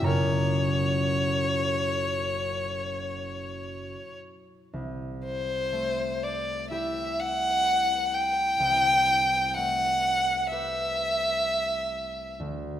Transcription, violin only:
0.07 4.16 C#5 medium
5.25 6.25 C5 medium
6.23 6.70 D5 medium
6.71 7.21 E5 medium
7.20 8.16 F#5 medium
8.14 9.56 G5 medium
9.54 10.49 F#5 medium
10.50 12.36 E5 medium

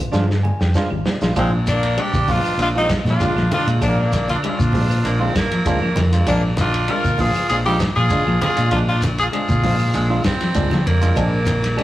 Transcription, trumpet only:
1.38 1.52 G#3 medium
1.70 2.03 A#3 medium
2.01 2.32 D4 medium
2.32 2.60 D4 medium
2.61 2.68 D4 medium
2.77 2.91 C4 medium
3.09 3.50 D4 medium
3.56 3.69 D4 medium
3.87 4.00 A#3 medium
4.04 4.29 A#3 medium
4.34 4.39 D4 medium
4.48 5.33 D4 medium
6.30 6.43 A#3 medium
6.61 6.92 D4 medium
6.90 7.22 F4 loud
7.22 7.51 F4 medium
7.52 7.59 F4 medium
7.68 7.81 D#4 medium
7.99 8.39 F4 medium
8.44 8.71 F4 medium
8.75 8.82 D4 medium
8.90 9.04 D4 medium
9.22 9.28 F4 medium
9.35 10.22 F4 medium

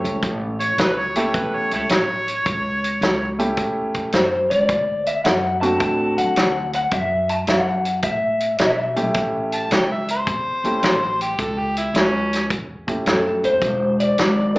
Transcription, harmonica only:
0.60 0.81 C#5 loud
0.79 1.00 B4 medium
0.98 1.16 C#5 medium
1.17 1.24 E4 medium
1.17 1.26 A4 medium
1.17 1.38 C#5 medium
1.36 1.56 B4 medium
1.55 1.72 C#5 medium
1.74 1.81 E4 medium
1.74 1.80 A4 medium
1.74 3.36 C#5 loud
9.54 9.71 A5 medium
9.73 9.90 G5 medium
9.92 10.09 E5 medium
10.11 11.18 C5 medium
11.22 11.42 G4 medium
11.41 11.60 A4 medium
11.59 11.76 G4 medium
11.78 11.97 E4 medium
11.96 12.49 C#4 medium

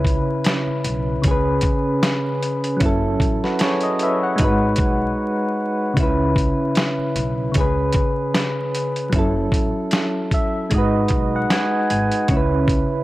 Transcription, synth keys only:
0.00 1.20 C#3 medium
0.00 1.21 C#4 medium
0.00 1.23 E4 medium
0.00 1.24 B4 medium
1.22 2.77 C#3 medium
1.22 2.79 C#4 medium
1.28 2.80 G#4 medium
1.28 2.82 B4 medium
2.77 4.34 F#3 medium
2.77 4.35 C#4 medium
2.83 4.37 E4 medium
2.83 3.22 A4 medium
3.44 3.60 F#4 medium
3.44 3.60 B4 medium
3.61 3.82 G#4 medium
3.61 3.82 C#5 medium
3.83 4.00 A4 medium
3.83 4.00 D#5 medium
4.03 4.23 B4 medium
4.03 4.23 E5 medium
4.23 4.61 C#5 soft
4.23 4.60 F#5 medium
4.36 5.92 G#3 medium
4.36 5.94 D#4 medium
4.41 5.95 F#4 medium
4.41 5.97 B4 medium
5.94 7.50 C#3 medium
5.94 7.52 C#4 medium
6.00 7.53 E4 medium
6.00 7.55 B4 medium
7.52 9.08 C#3 medium
7.52 9.10 C#4 medium
7.58 9.11 G#4 medium
7.58 9.13 B4 medium
9.10 10.66 F#3 medium
9.10 10.68 C#4 medium
9.16 10.69 E4 medium
9.16 10.71 A4 medium
10.34 10.70 E5 medium
10.70 12.25 G#3 medium
10.70 12.27 D#4 medium
10.74 12.28 F#4 medium
10.74 12.29 B4 medium
10.74 11.30 D#5 medium
11.36 11.50 F#5 medium
11.52 11.88 G#5 medium
11.91 12.27 G#5 medium
12.28 13.04 C#3 medium
12.28 13.04 C#4 medium
12.33 13.04 E4 medium
12.33 13.04 B4 medium

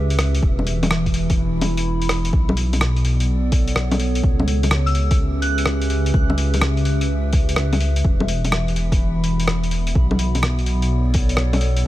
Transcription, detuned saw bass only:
0.00 0.41 C#2 medium
0.43 2.31 E1 medium
2.33 4.22 B1 medium
4.23 6.12 C#2 medium
6.14 8.03 C#2 medium
8.05 9.93 E1 medium
9.95 11.84 B1 medium

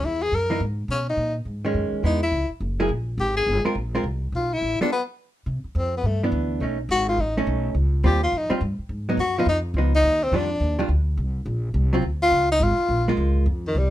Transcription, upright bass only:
0.03 0.31 E2 medium
0.32 0.60 F#2 medium
0.60 0.88 G#2 medium
0.88 1.16 B2 medium
1.17 1.45 A#2 medium
1.45 1.73 G#2 medium
1.74 1.91 F#2 medium
1.92 muted upright bass stroke soft
2.03 2.31 E2 medium
2.32 2.48 C#2 medium
2.49 muted upright bass stroke soft
2.60 2.88 F#1 medium
2.89 3.17 A#1 medium
3.18 3.46 G#1 medium
3.46 3.63 G1 medium
3.75 4.03 A#1 medium
4.04 4.31 C2 medium
4.32 4.60 B1 medium
4.61 4.78 A1 medium
4.79 muted upright bass stroke soft
5.46 5.63 C3 medium
5.64 muted upright bass stroke soft
5.75 6.03 F2 medium
6.03 6.31 G2 medium
6.32 6.60 D2 medium
6.60 6.88 B1 medium
6.89 7.17 G#1 medium
7.18 7.46 A1 medium
7.47 7.74 B1 medium
7.75 8.03 C#2 medium
8.03 8.31 D#2 medium
8.32 8.49 F2 medium
8.50 muted upright bass stroke soft
8.61 8.77 G2 medium
8.79 muted upright bass stroke soft
8.89 9.17 G#2 medium
9.17 9.45 F#2 medium
9.46 9.73 F2 medium
9.74 10.02 C#2 medium
10.03 10.31 D#2 medium
10.32 10.60 F2 medium
10.60 10.88 D#2 medium
10.89 11.17 D2 medium
11.17 11.45 C2 medium
11.46 11.73 A#1 medium
11.74 12.01 C2 medium
12.02 12.30 D2 medium
12.31 12.59 C#2 medium
12.60 12.77 G#1 medium
12.89 13.16 A#1 medium
13.17 13.45 C#2 medium
13.46 13.74 F2 medium
13.75 13.90 C2 medium

